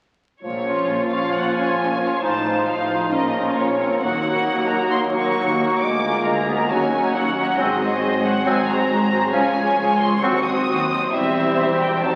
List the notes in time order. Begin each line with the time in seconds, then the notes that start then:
0.42 A#1 A#2 F3 F4 C#5
0.66 F3 C#4 F4 C#5
0.89 A#1 A#2
1.11 F3 C#4 F4 C#5 F5
1.34 A#1 A#2 F#5
1.56 F3 C#4 F4 C#5 G#5
1.78 A#1 A#2
2.00 F3 C#4 F4 C#5
2.22 A1 A2 F3 D#4 F4 C5 A5
2.45 F3 D#4 F4 C5
2.67 A1 A2 F3 D#4 F5
2.90 F3 D#4 F4 C5
3.11 A#1 A#2 F3 A#3 C#4 F4 A#4 D#5
3.34 A#3 C#4 F4 A#4
3.56 A#1 A#2 F3 C#4 C#5
3.79 A#3 C4 C#4 F4 A#4
4.02 D#2 F#3 A#3 D#4 F#4 A#4 F#5
4.25 A#3 D#4 F#4 A#4
4.49 D#2
4.70 A#3 D#4 F#4 A#4 A#5
4.91 D#2 C6
5.13 A#3 D#4 F#4 A#4 C#6
5.38 D#2
5.59 A#3 D#4 F#4 A#4
5.81 D2 G#3 A#3 D6
6.03 A#3 F4 G#4 A#4
6.25 D2 G#3 A#3 A#5
6.48 A#3 B3 F4 G#4 A#4
6.70 D#2 F#3 A#3 C#4 D#4 F#4 C#5 G#5
6.92 A#3 D#4 F#4 C#5
7.15 D#2 F#3 C#4 F#5
7.36 A#3 D#4 F#4 C#5
7.57 G#1 G#2 F#3 G#3 C4 F#4 G#4 C5 D#5
7.80 G#3 F#4 G#4 C5
8.01 G#1 G#2 G#3 F#4 G#4 C5
8.23 G#3 F#4 G#4 C5 F#5
8.45 G#1 G#2 F#3 G#3 C4 F#4 G#4 C5 G#5
8.67 G#3 F#4 G#4 C5 A#5
8.89 G#1 G#2 G#3 F#4 G#4 C5
9.11 G#3 F#4 G#4 C5
9.32 C#2 F3 G#3 C#4 F4 G#4 C#5 G#5
9.57 G#3 F4 G#4 C#5
9.77 C#2 G#3 F4 G#4 C#5
10.00 G#3 F4 G#4 C#5 C6
10.22 D#2 F#3 C4 F#4 C5 C#6
10.44 C4 F#4 C5 D#6
10.68 D#2 C4 F#4 C5
10.90 C4 F#4 C5
11.11 E1 E2 G3 C4 E4 G4 C5 E5
11.82 G5
12.02 F1 F2 F#3 C4 D#4 F#4 C5 A5